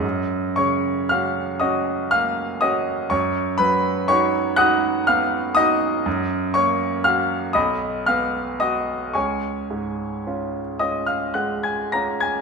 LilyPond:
\new Staff \with { instrumentName = "Grand piano" } { \time 12/8 \key fis \major \tempo 4. = 39 << { <dis'' dis'''>8 <cis'' cis'''>8 <eis'' eis'''>8 <dis'' dis'''>8 <eis'' eis'''>8 <dis'' dis'''>8 <cis'' cis'''>8 <b' b''>8 <cis'' cis'''>8 <fis'' dis''' fis'''>8 <eis'' eis'''>8 <dis'' dis'''>8~ | <dis'' dis'''>8 <cis'' cis'''>8 <eis'' eis'''>8 <dis'' b'' dis'''>8 <eis'' eis'''>8 <dis'' dis'''>8 <cis'' gis'' cis'''>4. <dis'' dis'''>16 <eis'' eis'''>16 <fis'' fis'''>16 <gis'' gis'''>16 <ais'' ais'''>16 <gis'' gis'''>16 | } \\ { fis,8 cis8 <cis' fis'>8 <cis' fis'>8 ais8 <cis' fis'>8 fis,8 fis8 <dis' fis'>8 <dis' fis'>8 b8 <dis' fis'>8 | fis,8 ais8 fis'8 b,,8 b8 fis'8 cis,8 gis,8 <cis' eis'>8 <cis' eis'>8 gis8 <cis' eis'>8 | } >> }